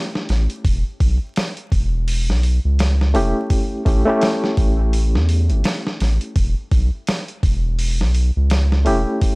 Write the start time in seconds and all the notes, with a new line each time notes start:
Already playing: A3 C#4 E4 G4
0.15 snare
0.29 A1, snare, open hi-hat
0.50 closed hi-hat
0.65 E1, kick, open hi-hat
1.00 B1, kick, open hi-hat
1.36 snare, open hi-hat
1.57 closed hi-hat
1.72 E1, kick, open hi-hat
2.08 open hi-hat
2.29 B1, snare
2.43 open hi-hat
2.65 C#2
2.79 snare, open hi-hat
3.01 snare
3.14 E1 A3 C#4 E4 G4, open hi-hat
3.50 kick, open hi-hat
3.85 A1 A3 C#4 E4 G4, kick, open hi-hat
4.05 A3 C#4 E4
4.09 G4
4.21 snare, open hi-hat
4.44 snare
4.57 A1, kick, open hi-hat
4.93 open hi-hat
5.14 E2, snare
5.29 open hi-hat
5.50 G1, closed hi-hat
5.64 snare, open hi-hat
5.87 snare
6.00 A1, snare, open hi-hat
6.21 closed hi-hat
6.36 E1, kick, open hi-hat
6.71 B1, kick, open hi-hat
7.07 snare, open hi-hat
7.28 closed hi-hat
7.43 E1, kick, open hi-hat
7.79 open hi-hat
8.01 B1, snare
8.14 open hi-hat
8.36 C#2
8.50 snare, open hi-hat
8.72 snare
8.85 E1 A3 C#4 E4 G4, open hi-hat
9.22 kick, open hi-hat